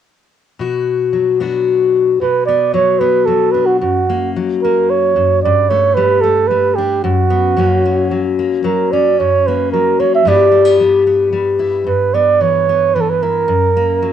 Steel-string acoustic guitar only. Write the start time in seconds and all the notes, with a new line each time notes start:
0.59 B2 F#4
1.13 F#3
1.40 B3 D4 F#4
2.21 B2
2.48 B3
2.74 F#3
3.01 B3
3.27 F#3
3.54 D4
3.81 F#2
4.10 A#3
4.36 F#3
4.64 A#3
5.16 F#2
5.45 G2
5.70 A3
5.97 G3
6.23 A3
6.51 G3
6.78 D4
7.04 F#2
7.30 B3
7.56 F#2 F#3 A#3 C#4
7.85 A#3
8.11 F#3
8.39 A#3
8.64 F#3
8.93 C#4
9.20 F#2
9.48 A#3
9.73 F#3
10.00 A#3
10.25 G2 G3 B3 E4 G4
10.52 A3
10.65 B3
10.80 G3
11.07 B3
11.32 G3
11.59 E4
11.86 G2
12.14 B3
12.41 E3
12.69 B3
12.96 E3
13.23 E4
13.48 F#2
13.77 A#3
14.02 F#3